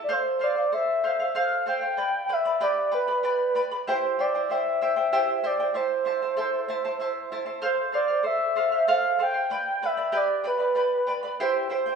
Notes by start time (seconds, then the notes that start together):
0.04 D5
0.09 A4 C5 F5
0.39 A4 C5 F5
0.44 D5
0.56 C5 F5
0.72 A4 C5 E5
1.04 A4 C5 F5
1.20 C5 F5
1.35 A4 C5 F5
1.66 A4 C5 F5 G5
1.81 C5 F5
1.97 B4 D5 G5 B5
2.29 B4 D5 E5 G5 B5
2.45 B4 D5 B5
2.60 G4 B4 D5 G5 B5
2.91 B4 D5 G5 B5
3.08 B4 D5 B5
3.23 B4 D5 G5 B5
3.55 B4 D5 G5 B5
3.71 B4 D5 B5
3.87 E4 G4 C5 E5 G5
4.19 E4 C5 D5 E5 G5
4.35 E4 C5 G5
4.50 E4 C5 E5 G5
4.81 E4 C5 E5 G5
4.96 E4 C5 G5
5.12 E4 G4 C5 E5 G5
5.37 E5
5.43 E4 C5 D5 E5 G5
5.60 E4 C5 G5
5.74 E4 C5 E5 A5
6.05 E4 C5 E5 A5
6.22 E4 C5 A5
6.36 E4 A4 C5 E5 A5
6.68 E4 C5 E5 A5
6.85 E4 C5 A5
7.00 E4 C5 E5 A5
7.32 E4 C5 E5 A5
7.46 E4 C5 A5
7.62 A4 C5 F5
7.92 A4 C5 D5 F5
8.08 C5 F5
8.23 A4 C5 E5
8.56 A4 C5 F5
8.72 C5 F5
8.87 A4 C5 F5
9.19 A4 C5 F5 G5
9.34 C5 F5
9.50 B4 D5 G5 B5
9.82 B4 D5 E5 G5 B5
9.97 B4 D5 B5
10.12 G4 B4 D5 G5 B5
10.17 D5
10.44 B4 D5 G5 B5
10.59 B4 D5 B5
10.75 B4 D5 G5 B5
11.07 B4 D5 G5 B5
11.23 B4 D5 B5
11.40 E4 G4 C5 E5 G5
11.70 E4 C5 E5 G5
11.74 C5
11.86 E4 C5 G5